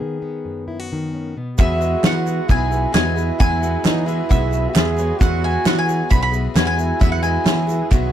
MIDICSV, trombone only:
0, 0, Header, 1, 2, 480
1, 0, Start_track
1, 0, Key_signature, 4, "major"
1, 0, Tempo, 451807
1, 1689, Time_signature, 4, 2, 24, 8
1, 8628, End_track
2, 0, Start_track
2, 0, Title_t, "Trombone"
2, 0, Program_c, 0, 57
2, 1672, Note_on_c, 0, 66, 101
2, 2636, Note_on_c, 0, 64, 97
2, 2652, Note_off_c, 0, 66, 0
2, 3115, Note_off_c, 0, 64, 0
2, 3122, Note_on_c, 0, 64, 99
2, 4076, Note_on_c, 0, 63, 100
2, 4092, Note_off_c, 0, 64, 0
2, 4314, Note_on_c, 0, 64, 99
2, 4330, Note_off_c, 0, 63, 0
2, 5044, Note_on_c, 0, 68, 115
2, 5060, Note_off_c, 0, 64, 0
2, 5521, Note_on_c, 0, 66, 114
2, 5537, Note_off_c, 0, 68, 0
2, 6676, Note_off_c, 0, 66, 0
2, 6953, Note_on_c, 0, 64, 97
2, 8406, Note_on_c, 0, 66, 102
2, 8421, Note_off_c, 0, 64, 0
2, 8628, Note_off_c, 0, 66, 0
2, 8628, End_track
0, 0, End_of_file